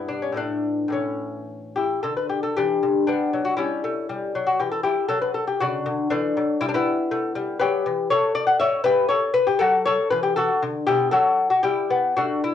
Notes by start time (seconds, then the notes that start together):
Already playing: G2 G3 B3
0.09 D4
0.22 C#4
0.32 A2 E3 A3
0.37 D4
0.88 A2 E3 A3
0.93 C#4
1.76 E4 G4
2.03 D3 A4
2.17 B4
2.29 G4
2.43 A4
2.57 E3 D4 G4
2.83 D3
3.07 G3 B3 D4
3.33 F#3
3.45 F#4
3.57 G3 C#4 E4
3.84 A3
4.09 G3
4.35 F#3
4.46 F#4
4.59 E3 G4
4.71 A4
4.83 E4 G4
5.08 F#3 A4
5.21 B4
5.34 A4
5.47 G4
5.60 C#3 D4 F#4
5.86 D3
6.10 E3 A3 D4
6.37 F#3
6.61 G3 E4
6.69 D4
6.74 B3 E4
7.11 A3
7.35 G3
7.59 F#3 G4 B4
7.86 E3
8.10 A3 A4 C#5
8.35 D5
8.47 F#5
8.60 C#5 E5
8.84 G4 B4
9.09 A4 C#5
9.34 B4
9.47 G4
9.59 F#3 F#4 A4
9.86 A4 C#5
10.10 E3 B4
10.23 G4
10.36 F#4 A4
10.62 D3
10.87 B2 E4 G4
11.11 F#3 F#4 A4
11.50 F#4
11.63 G3 E4 G4
11.90 B3
12.17 A3 D4 F#4
12.44 E4